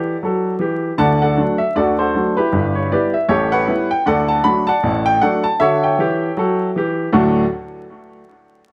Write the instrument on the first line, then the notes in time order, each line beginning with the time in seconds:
grand piano
Already playing: E3 F#4 G4 A4 D5
0.23 F#3 A4
0.59 E3 G4
0.98 D2 D3 D5 F#5 A5
1.22 A4 D5 F#5
1.37 F#3 A3 D4
1.58 E5
1.75 D2 D3 F#4 A4 D5
1.99 F#4 A4 C5
2.14 F#3 A3 D4
2.37 E4 G4 B4
2.52 G1 G2
2.75 C#5
2.92 G3 B3 E4 G4 B4 D5
3.14 E5
3.28 A1 A2 G4 A4 C#5
3.52 B4 C#5 F#5
3.67 G3 B3 E4
3.91 G5
4.06 D2 D3 A4 D5 F#5
4.29 A5
4.44 F#3 A3 D4 B5
4.67 D5 F#5 A5
4.83 A1 A2
5.06 G5
5.21 F#3 A3 D4 A4 D5 F#5
5.44 A5
5.60 D3 F#4 A4 C#5 E5
5.84 C#5 E5 G5
5.98 E3 G4
6.37 F#3 A4
6.76 E3 G4
7.12 D2 A2 F#3 A3 D4 F#4 F#5